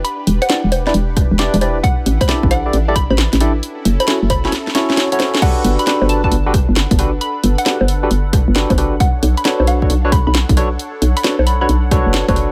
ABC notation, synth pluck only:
X:1
M:4/4
L:1/16
Q:"Swing 16ths" 1/4=134
K:Glyd
V:1 name="Synth pluck"
b2 z f3 z8 z2 | f2 z b b z f4 b b z4 | z3 b2 z b b z8 | f2 z b b z a a z8 |
b2 z f3 z8 z2 | f2 z b b z f4 b b z4 | z3 b2 z b b z8 |]